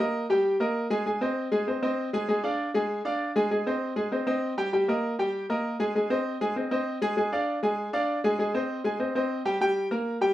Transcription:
0.00 A#3 A#4 D#5
0.30 G3 G4 G5
0.60 A#3 A#4 D#5
0.90 G#3 G#4 G#5
1.06 G#3 G#4 G#5
1.21 C4 C5 D#5
1.52 G#3 G#4 G#5
1.67 C4 C5 D#5
1.83 C4 C5 D#5
2.13 G#3 G#4 G#5
2.29 G#3 G#4 G#5
2.44 D4 D5 F5
2.74 G#3 G#4 G#5
3.05 D4 D5 F5
3.36 G#3 G#4 G#5
3.51 G#3 G#4 G#5
3.67 C4 C5 D#5
3.96 G#3 G#4 G#5
4.12 C4 C5 D#5
4.27 C4 C5 D#5
4.57 G3 G4 G5
4.73 G3 G4 G5
4.88 A#3 A#4 D#5
5.19 G3 G4 G5
5.50 A#3 A#4 D#5
5.80 G#3 G#4 G#5
5.95 G#3 G#4 G#5
6.10 C4 C5 D#5
6.41 G#3 G#4 G#5
6.56 C4 C5 D#5
6.71 C4 C5 D#5
7.02 G#3 G#4 G#5
7.17 G#3 G#4 G#5
7.32 D4 D5 F5
7.63 G#3 G#4 G#5
7.93 D4 D5 F5
8.24 G#3 G#4 G#5
8.39 G#3 G#4 G#5
8.54 C4 C5 D#5
8.84 G#3 G#4 G#5
9.00 C4 C5 D#5
9.15 C4 C5 D#5
9.45 G3 G4 G5
9.61 G3 G4 G5
9.91 A#3 A#4 A#5
10.21 G3 G4 G5

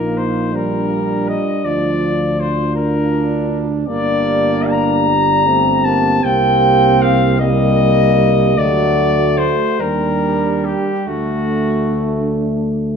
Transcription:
Already playing: A#1 A#3 D#4 F4 A#4
0.17 C5
0.54 G3 D4 A#4
1.28 D#5
1.64 D2 F3 D5
2.40 C5
2.75 D4 A#4
3.87 G1 A#3 D4 G4 D5
4.70 A#5
5.09 G3
5.47 A3 C4
5.84 A#3 A5
6.23 C2 A#3 C4 G4 G5
7.02 F5
7.40 G3 A#3 G4 D#5
8.58 D2 F#3 A3 F#4 D5
9.38 C5
9.80 D#2 G3 D4 A#4
10.65 G4
11.07 D2 A3 D4 F#4

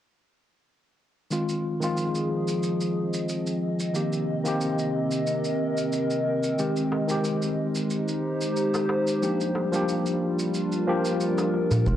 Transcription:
1.31 D#3 F3 G#3 C4 F4, shaker
1.49 shaker
1.68 G#4
1.80 D#3 G#3 C4, shaker
1.84 C4 F4
1.96 D#5, shaker
2.15 shaker
2.48 shaker
2.63 shaker
2.81 shaker
3.14 shaker
3.29 shaker
3.47 shaker
3.80 shaker
3.94 C3 D#3 A#3 C4 G4, shaker
4.13 shaker
4.44 D#3 A#3 C4, shaker
4.48 G4
4.61 shaker
4.67 A#4
4.79 shaker
5.12 shaker
5.27 shaker
5.45 shaker
5.78 shaker
5.93 shaker
6.11 shaker
6.44 shaker
6.58 D#3 G#3 C4 G4, shaker
6.77 shaker
6.92 darbuka ka
7.07 D#3 G#3 C4 D#4, shaker
7.11 G4
7.25 shaker
7.43 shaker
7.66 G4
7.75 C5, shaker
7.91 shaker
8.08 shaker
8.41 shaker
8.57 shaker
8.74 darbuka ka, darbuka tek, shaker
8.89 darbuka tek
9.08 shaker
9.22 F3 G3 A#3 D4 G4, shaker
9.41 shaker
9.55 F4, darbuka ka, darbuka tek
9.72 F3 A#3 D4, shaker
9.76 G4
9.81 D4
9.89 shaker
10.06 shaker
10.39 A#4, shaker
10.55 shaker
10.72 shaker
10.87 F3 A#3 D4 G4
11.05 shaker
11.21 shaker
11.38 darbuka tek, shaker
11.54 darbuka ka
11.71 darbuka dum, shaker
11.85 F1 D#3 G#3 C4 F4, kick, shaker

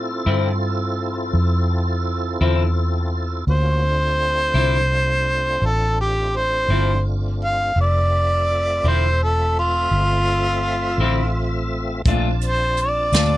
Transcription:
Already playing: A2 C4 E4 F4 A4
0.26 G2 D3 F3 C4 E4
1.33 F2
2.41 E2 D3 F3 C4 E4
3.47 D2 A#3 C#4 F4 F#4 C5
3.82 A3 C4 D4 F4
4.54 C2 D3 F3 C4 E4
5.62 A1 A4
6.01 G4
6.36 C5
6.68 G1 D3 F3 C4 E4
7.44 F5
7.76 F1 A3 C4 F4 E5
7.81 D5
8.84 E1 D3 F3 C4 E4 C5
9.23 A4
9.59 F4
9.91 G1
10.98 A1 D3 F3 C4 E4
12.06 A#1 A#2 A3 C4 D4 F4 A5, kick, closed hi-hat
12.41 closed hi-hat
12.46 C5
12.77 closed hi-hat
12.81 D5
13.12 D2 A#2 A3 D4 F4, snare, closed hi-hat

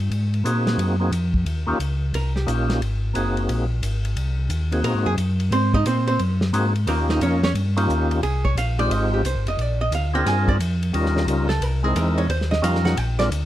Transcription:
0.10 G#2, ride
0.34 ride
0.44 A#2 A#3 C4 D#4 F#4 G#4, hi-hat pedal, ride
0.67 snare, ride
0.78 F#2, ride
1.00 A#3 C4 D#4 F#4 G#4
1.11 F2, hi-hat pedal, ride
1.34 kick
1.45 D#2, ride
1.67 D#2 A#3 C#4 D#4 F4 G4
1.79 C#2, hi-hat pedal, ride
2.14 C2 A#4, ride
2.36 G4, snare
2.46 A#1 A#3 C#4 D#4 F4 G4, hi-hat pedal, ride
2.70 snare, ride
2.81 G#1, ride
3.14 F#1 A#3 C4 D#4 F#4 G#4, hi-hat pedal, ride
3.37 ride
3.49 A#1, ride
3.82 G#1, hi-hat pedal, ride
4.05 ride
4.16 C2, ride
4.49 D#2, hi-hat pedal, ride
4.71 A#3 C4 D#4 F#4 G#4, ride
4.83 A#2 A#4, ride
4.94 G#2
5.06 F#2 G#4
5.17 F#2, hi-hat pedal, ride
5.40 ride
5.51 G#2 C4 C5, ride
5.74 D#4 D#5, kick
5.85 A#2 C4 C5, hi-hat pedal, ride
6.07 C4 C5, ride
6.19 F#2, ride
6.41 snare
6.53 G#2 A#3 C4 D#4 F#4 G#4, hi-hat pedal, ride
6.76 ride
6.87 D#2 A#3 C#4 D#4 F4 G4 A#4, ride
7.09 D#4 D#5, snare
7.21 F2 A#3 C#4 D#4 F4 A#4 C#5, hi-hat pedal, ride
7.43 C#4 C#5, snare, ride
7.54 G2, ride
7.77 A#3 C#4 D#4 F4 G4, ride
7.89 D#2, hi-hat pedal
8.11 ride
8.22 C2 G#4, ride
8.45 C#5, kick
8.55 A#1 F5, hi-hat pedal, ride
8.79 G#3 C4 D#4 F4 G4 D5, ride
8.90 G#1 D#5, ride
9.14 G4
9.24 C2 C5, hi-hat pedal, ride
9.35 G#1
9.46 F1 D#5, ride
9.57 A#1, ride
9.61 D5
9.81 D#5
9.91 D2 F5, hi-hat pedal, ride
10.14 C4 D4 F4 G#4 A#4 G5
10.25 G2 G#5, snare, ride
10.48 D5, kick
10.59 F2, hi-hat pedal, ride
10.83 ride
10.93 D#2 G3 C#4 D#4 F4 A#4, ride
11.06 snare
11.17 snare
11.27 C#2 G3 C#4 D#4 F4 A#4, hi-hat pedal, ride
11.49 A4, snare, ride
11.61 C2 A#4, ride
11.83 G#3 C4 D#4 E4 G#4 A#4
11.95 E2 A#4, hi-hat pedal, ride
12.18 C#5, ride
12.29 D#2 C5, ride
12.41 snare
12.51 D#5, snare
12.62 F2 G3 C#4 D#4 F4 A#4 F5, hi-hat pedal, ride
12.75 snare
12.85 F#5, snare
12.97 A#1 G5, ride
13.19 G#3 C4 D4 F4 A#4 D5, snare, ride
13.31 D2, hi-hat pedal, ride

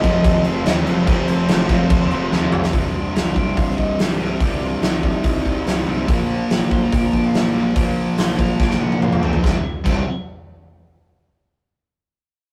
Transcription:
Already playing: F2 C3 F3
0.01 F1 C3 F3 A3 C4 F4 D#5, kick, crash
0.06 F2
0.24 D#2, kick, crash
0.44 F1 F2 C3 F3 F5, crash
0.64 D#2 F2 C3 F3 A3 C4 F4 D#5, snare, crash
0.84 F1 C5, crash
1.04 F1 F2 C3 F3 A3 C4 F4, kick, crash
1.28 F1, crash
1.48 F1, snare, crash
1.67 F1 F2 C3 F3 A3 C4 F4, kick, snare, crash
1.90 D#2, kick, crash
2.11 F1 F2 C3 F3, crash
2.29 D#2 F2 C3 F3 A3 C4, snare
2.34 F4
2.52 B1, mid tom
2.64 snare
2.71 C1 C2 G2 C3, kick, open hi-hat
3.14 C1 A#5, snare, open hi-hat
3.36 G5, kick
3.56 C1 F5, kick, open hi-hat
3.70 snare
3.76 C1 D#5, kick
3.99 C1 C5, snare, open hi-hat
4.18 C1 C2 G2 C3 A#4
4.39 C1 C2 G2 C3 G4, kick, open hi-hat
4.63 F4
4.82 C1 D#4, snare, open hi-hat
5.02 D#4, kick
5.23 C1, kick, open hi-hat
5.45 C1, kick
5.66 C1, snare, open hi-hat
5.86 C1 C2 G2 C3
6.07 A#1 A#2 F3 A#3, kick, open hi-hat
6.50 A#1, snare, open hi-hat
6.71 C6, kick
6.85 A#5
6.92 A#1 G5, kick, open hi-hat
7.05 A#5
7.13 A#1 G5, kick
7.25 F5
7.33 A#1 D5, snare, open hi-hat
7.52 A#1 A#2 F3 A#3
7.74 A#1 A#2 F3 A#3, kick, open hi-hat
8.17 A#1 C6, snare, open hi-hat
8.39 A#5, kick
8.59 A#1 G5, kick, snare
8.70 snare
8.80 A#1 F#5, high tom
8.92 high tom
9.01 A#1 F5, mid tom
9.13 mid tom
9.21 A#1 F3 A#3 C5, floor tom
9.25 A#2
9.33 floor tom
9.42 C1 C2 G2 C3, kick, snare
9.84 C1 C2 G2 C3, kick, crash

